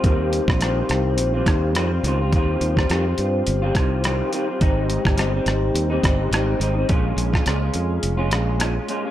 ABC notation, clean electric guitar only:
X:1
M:4/4
L:1/16
Q:"Swing 16ths" 1/4=105
K:Ebmix
V:1 name="Clean electric guitar"
[E,G,CF]3 [G,CF] [E,G,CF]4- [E,G,CF] [G,CF] [E,G,CF]2 [E,G,CF] [G,CF] [E,G,CF] [G,CF] | [E,G,CF]3 [G,CF] [E,G,CF] [G,CF]4 [G,CF] [E,G,CF]2 [E,G,CF]2 [E,G,CF] [G,CF] | [A,,G,CE]3 [G,CE] [A,,G,CE] [G,CE]4 [G,CE] [A,,G,CE]2 [A,,G,CE]2 [A,,G,CE] [G,CE] | [B,,A,DF]3 [A,DF] [B,,A,DF] [A,DF]4 [A,DF] [B,,A,DF]2 [B,,A,DF] [A,DF] [B,,A,DF] [A,DF] |]